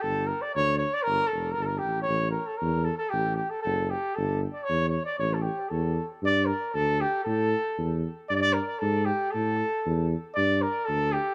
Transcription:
X:1
M:2/4
L:1/16
Q:"Swing 16ths" 1/4=116
K:none
V:1 name="Trumpet"
A2 _B d ^c2 c d | _B2 A2 B/2 A/2 B G2 | ^c2 _B A B2 A A | G2 G A A2 G2 |
A2 z d ^c2 c d | ^c A G2 A3 z | d2 _B2 A2 G2 | A6 z2 |
d/2 d/2 d _B2 A2 G2 | A6 z2 | d2 _B2 A2 G2 |]
V:2 name="Tuba" clef=bass
G,,,4 D,,4 | G,,,2 F,,,2 G,,,2 A,,,2 | A,,,4 E,,4 | A,,,4 ^F,,,4 |
G,,,4 E,,4 | A,,,4 E,,4 | G,,4 D,,4 | A,,4 E,,4 |
G,,4 ^G,,4 | A,,4 E,,4 | G,,4 D,,4 |]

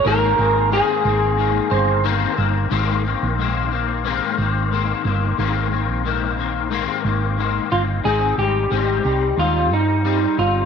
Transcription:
X:1
M:4/4
L:1/16
Q:"Swing 16ths" 1/4=90
K:Ab
V:1 name="Clean electric guitar"
B2 A4 z4 c2 z4 | z16 | z16 | z16 |]
V:2 name="Clean electric guitar"
B4 A8 z4 | z16 | z12 z2 F2 | A2 G6 F2 E4 F2 |]
V:3 name="Clean electric guitar"
[A,,E,B,C]2 [E,B,C]2 [A,,E,B,C]2 [E,B,C]2 [A,,E,B,C]2 [E,B,C]2 [E,B,C]2 [E,B,C]2 | [A,,E,B,C]2 [E,B,C]2 [A,,E,B,C]2 [E,B,C]2 [A,,E,B,C]2 [E,B,C]2 [A,,E,B,C]2 [E,B,C]2 | [A,,E,B,C]2 [E,B,C]2 [A,,E,B,C]2 [E,B,C]2 [A,,E,B,C]2 [E,B,C]2 [A,,E,B,C]2 [E,B,C]2 | [A,,CE]2 [G,CE]2 [A,,G,CE]2 [G,CE]2 [A,,G,CE]2 [G,CE]2 [G,CE]2 [G,CE]2 |]
V:4 name="Fingered electric bass" clef=bass
A,,,2 A,,,3 z A,,,4 G,,,4 G,,,2 | A,,,3 B,,,6 z A,,,4 G,,,2 | A,,,3 B,,,6 z A,,,4 G,,,2 | A,,,2 A,,,2 A,,,2 C,,2 E,,2 G,,4 G,,,2 |]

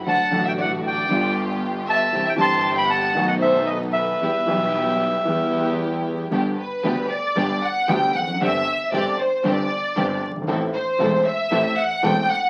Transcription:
X:1
M:4/4
L:1/16
Q:1/4=115
K:Em
V:1 name="Bandoneon"
a3 g f2 g4 z4 a2- | a g c'3 b a3 f e2 ^d2 e2- | e12 z4 | [K:G] z16 |
z16 | z16 |]
V:2 name="Violin section"
f3 e d2 d4 z4 e2- | e e a3 g f3 ^d c2 B2 B2- | B12 z4 | [K:G] z2 B4 d4 f2 g2 f2 |
e4 d2 c2 d6 z2 | z2 c4 e4 f2 g2 f2 |]
V:3 name="String section"
[A,DF]2 [A,DF]6 [B,=FG]8 | [CEG]2 [CEG]6 [B,^DA]8 | [B,EG]2 [B,EG]6 [B,EG]8 | [K:G] [B,DG]2 z2 [B,DG]2 z2 [B,DG]2 z2 [B,DG]2 z2 |
[CDG]2 z2 [CDG]2 z2 [CDG]2 z2 [CDG]2 z2 | [CEA]2 z2 [CEA]2 z2 [CEA]2 z2 [CEA]2 z2 |]
V:4 name="Grand piano" clef=bass
[D,,D,F,A,F]2 [A,,,A,,D,F,A,F]6 [G,,,G,,D,G,B,=F]8 | [C,,C,E,G,CG]2 [G,,,G,,E,G,CG]6 [B,,,B,,^D,A,B,F]8 | [E,,E,G,B,G]2 [B,,,B,,E,G,B,G]6 [E,,E,G,B,G]8 | [K:G] [G,,,G,,D,G,B,G]2 z2 [D,,D,G,B,G]2 z2 [G,,,G,,D,G,B,G]2 z2 [D,,D,G,B,G]2 z/2 E,,/2 =F,,/2 ^F,,/2 |
[G,,,G,,D,G,CG]2 z2 [G,,,G,,D,G,CG]2 z2 [G,,,G,,D,G,CG]2 z2 [G,,,G,,D,G,CG]2 z/2 F,,,/2 G,,,/2 _A,,,/2 | [A,,,A,,E,A,CA]2 z2 [E,,,E,,E,A,CA]2 z2 [A,,,A,,E,A,CA]2 z2 [E,,,E,,E,A,CA]2 z2 |]
V:5 name="Double bass" clef=bass
D,,2 A,,,6 G,,,8 | C,,2 G,,,6 B,,,8 | E,,2 B,,,6 E,,8 | [K:G] G,,,2 z2 D,,2 z2 G,,,2 z2 D,,2 =F,,,2 |
G,,,2 z2 G,,,2 z2 G,,,2 z2 G,,,2 G,,,2 | A,,,2 z2 E,,,2 z2 A,,,2 z2 E,,,2 z2 |]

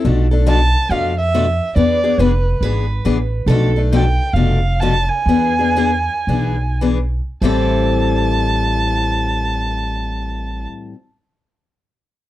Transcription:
X:1
M:4/4
L:1/16
Q:"Swing" 1/4=126
K:Am
V:1 name="Violin"
z4 a4 f2 e6 | d4 B4 z8 | z4 g4 f4 a2 ^g2- | ^g12 z4 |
a16- | a16 |]
V:2 name="Steel-string acoustic guitar"
z16 | z8 B8 | A3 z12 z | z16 |
c16- | c16 |]
V:3 name="Steel-string acoustic guitar"
[B,,F,A,DA]2 [A,DA]2 [B,,F,A,DA]2 z2 [B,,F,A,DA]2 z2 [B,,F,A,DA]2 z2 | [E,B,D^G]2 [B,DG]2 [E,B,DG]2 z2 [E,B,DG]2 z2 [E,B,DG]2 z2 | [B,,F,A,DA]2 [A,DA]2 [B,,F,A,DA]2 z2 [B,,F,A,DA]2 z2 [B,,F,A,DA]2 z2 | [E,B,D^G]2 [B,DG]2 [E,B,DG]2 z2 [E,B,DG]2 z2 [E,B,DG]2 z2 |
[A,,E,G,CEA]16- | [A,,E,G,CEA]16 |]
V:4 name="Upright bass" clef=bass
B,,,8 F,,8 | E,,4 F,,,4 ^G,,,4 A,,,4 | B,,,8 F,,,8 | E,,8 B,,,8 |
A,,,16- | A,,,16 |]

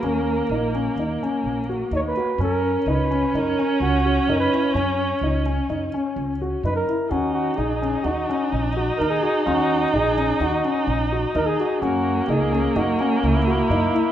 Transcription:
X:1
M:5/4
L:1/16
Q:1/4=127
K:F#mix
V:1 name="Flugelhorn"
A6 z8 z2 c B3 | A4 B4 A4 F4 A B3 | c6 z8 z2 B A3 | F2 F2 G4 F4 z4 A G3 |
F4 G4 F4 z4 A G3 | F4 G4 F4 E8 |]
V:2 name="Grand piano"
C4 D2 C2 D2 C4 F2 D2 F2 | C4 D2 C2 D2 C4 F2 D2 E2 | C4 D2 C2 D2 C4 F2 D2 E2 | C4 D2 C2 D2 C4 F2 D2 F2 |
C4 D2 C2 D2 C4 F2 D2 F2 | C4 D2 C2 D2 C4 F2 D2 E2 |]
V:3 name="Viola"
A,16- A,4 | C16- C4- | C16- C2 z2 | D16- D4- |
D16- D4 | A,16- A,4 |]
V:4 name="Upright bass" clef=bass
D,,4 A,,,4 D,,2 z2 A,,,4 D,,2 z2 | F,,4 C,,4 F,,2 z2 C,,4 F,,2 z2 | F,,4 C,,4 F,,2 z2 C,,4 F,,2 z2 | D,,4 A,,,4 D,,2 z2 A,,,4 D,,2 z2 |
D,,4 A,,,4 D,,2 z2 A,,,4 D,,2 z2 | F,,4 C,,4 F,,2 z2 C,,4 F,,2 z2 |]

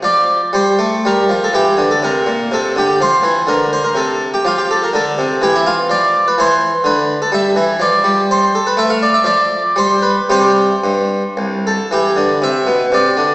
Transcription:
X:1
M:3/4
L:1/16
Q:1/4=122
K:F
V:1 name="Harpsichord"
d4 c4 B3 A | G3 A B4 A2 G2 | c4 B2 c B A3 G | F G A B A4 G E F2 |
[K:C] d3 B c4 B3 A | e4 d4 c2 A B | e f d e d4 c2 B2 | c8 z2 A2 |
G4 e4 d4 |]
V:2 name="Harpsichord" clef=bass
F,4 G,2 A,2 G,2 F,2 | E,2 D,2 C,2 B,,2 C,2 D,2 | F,2 E,2 D,4 C,4 | F,4 D,2 C,2 E,4 |
[K:C] F,4 E,4 D,4 | G,2 E,2 F,2 G,6 | A,4 F,4 G,4 | [C,G,G]4 G,,4 C,,4 |
E,2 D,2 C,2 B,,2 C,2 D,2 |]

